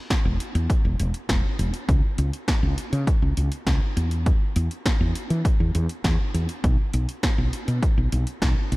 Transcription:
0.10 kick, snare, closed hi-hat
0.25 E1
0.40 closed hi-hat
0.55 E2, closed hi-hat
0.70 kick, closed hi-hat
0.85 E1
1.00 E1, closed hi-hat
1.14 closed hi-hat
1.29 E1, kick, snare, closed hi-hat
1.59 E1, closed hi-hat
1.74 closed hi-hat
1.89 C#2, kick, closed hi-hat
2.18 C#2, closed hi-hat
2.33 closed hi-hat
2.48 kick, snare, closed hi-hat
2.63 C#2
2.78 closed hi-hat
2.93 C#3, closed hi-hat
3.07 kick, closed hi-hat
3.22 C#2
3.37 C#2, closed hi-hat
3.52 closed hi-hat
3.67 C#2, kick, snare, closed hi-hat
3.97 E2, closed hi-hat
4.11 closed hi-hat
4.26 kick, closed hi-hat
4.56 E2, closed hi-hat
4.71 closed hi-hat
4.86 kick, snare, closed hi-hat
5.01 E2
5.15 closed hi-hat
5.30 E3, closed hi-hat
5.45 kick, closed hi-hat
5.60 E2
5.75 E2, closed hi-hat
5.89 closed hi-hat
6.04 E2, kick, snare, closed hi-hat
6.34 E2, closed hi-hat
6.49 closed hi-hat
6.64 B1, kick, closed hi-hat
6.93 B1, closed hi-hat
7.09 closed hi-hat
7.23 kick, snare, closed hi-hat
7.38 B1
7.53 closed hi-hat
7.68 B2, closed hi-hat
7.83 kick, closed hi-hat
7.98 B1
8.12 B1, closed hi-hat
8.27 closed hi-hat
8.42 B1, kick, snare, closed hi-hat
8.72 B1, closed hi-hat

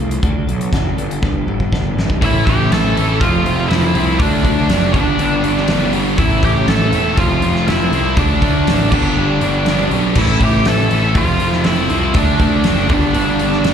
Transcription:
Already playing: C2 F3 A3 A4
0.00 C4 F4
0.11 closed hi-hat
0.22 D2 D3 D4 F#4 A4, kick, closed hi-hat
0.47 B1 D4 F#4 A4, closed hi-hat
0.61 closed hi-hat
0.72 F#1 D3 D4 F#4 A4, kick, snare, closed hi-hat
0.97 G1 G3 B3 D4 A4, closed hi-hat
1.11 closed hi-hat
1.22 G1 G3 B3 D4 A4, kick, snare
1.47 G1 B3 D4 A4, mid tom
1.60 kick
1.72 G1 G3 B3 D4 A4, kick, snare
1.96 G#1 B3 D4 A4, snare
2.10 kick
2.22 A1 A2 E3 A3 C#4 E4 E5, kick, open hi-hat
2.26 E4
2.46 A1 A2 E3 A3 G4 G5, kick, open hi-hat
2.71 A1 A2 E3 A3 A4 A5, snare, open hi-hat
2.96 A1 A2 E3 A3 C#4 E4, open hi-hat
3.20 F1 F2 C3 F3 A3 C4 F4 F5, kick, open hi-hat
3.45 F1 F2 C3 F3, open hi-hat
3.68 F1 F2 C3 F3 E4 E5, snare, open hi-hat
3.95 C2 F2 C3 F3 A3 C4 F4, open hi-hat
4.19 D2 D3 F#3 A3 D4 D5, kick, open hi-hat
4.44 D2 D3 A3 D4, kick, open hi-hat
4.69 F#1 D3 A3 D4, snare, open hi-hat
4.93 G1 G2 D3 G3 B3 D4 D5, kick, open hi-hat
5.18 G1 G2 D3 G3, open hi-hat
5.43 G1 G2 D3 G3, open hi-hat
5.57 C#5, snare
5.68 G1 G2 D3 G3 B3 D4, snare, open hi-hat
5.92 G1 G2 D3 G3, open hi-hat
6.17 A1 A2 E3 A3 C#4 E4 E5, kick, open hi-hat
6.42 A1 A2 E3 A3 G4 G5, kick, open hi-hat
6.67 A1 A2 E3 A3 A4 A5, snare, open hi-hat
6.91 E1 A2 E3 A3 C#4 E4, open hi-hat
7.17 F1 F2 C3 F3 A3 C4 F4 F5, kick, open hi-hat
7.42 F1 F2 C3 F3, open hi-hat
7.56 snare
7.67 F1 F2 C3 F3 E4 E5, snare, open hi-hat
7.92 C2 F2 C3 F3 A3 C4 F4, open hi-hat
8.17 D2 D3 F#3 A3 D4 D5, kick, open hi-hat
8.41 D2 D3 A3 D4, kick, open hi-hat
8.67 A1 D3 A3 D4, snare, open hi-hat
8.91 G1 G2 D3 G3 B3 D4 D5, kick, crash
9.17 G1 G2 D3 G3
9.41 G1 G2 D3 G3, open hi-hat
9.65 G1 G2 D3 G3 B3 D4, snare, open hi-hat
9.91 B1 G2 D3 G3, open hi-hat
10.15 A1 A2 E3 A3 C#4 E4, kick, crash
10.21 E5
10.40 A1 A2 E3 A3 G4, kick, open hi-hat
10.45 G5
10.65 A1 A2 E3 A3 A4 A5, snare, open hi-hat
10.91 A1 A2 E3 A3 C#4 E4, open hi-hat
11.15 F1 F2 C3 F3 A3 C4 F4 F5, kick, open hi-hat
11.40 F1 F2 C3 F3, open hi-hat
11.53 snare
11.64 F1 F2 C3 F3 E4 E5, snare, open hi-hat
11.90 C2 F2 C3 F3 A3 C4 F4, open hi-hat
12.14 D2 D3 F#3 A3 D4 D5, kick, open hi-hat
12.40 D2 D3 A3 D4, kick, open hi-hat
12.64 F#1 D3 A3 D4, snare, open hi-hat
12.89 G1 G2 D3 G3 B3 D4 D5, kick, open hi-hat
13.14 G1 G2 D3 G3, open hi-hat
13.39 G1 G2 D3 G3, open hi-hat
13.53 snare
13.64 G1 G2 D3 G3 B3 D4, snare, open hi-hat

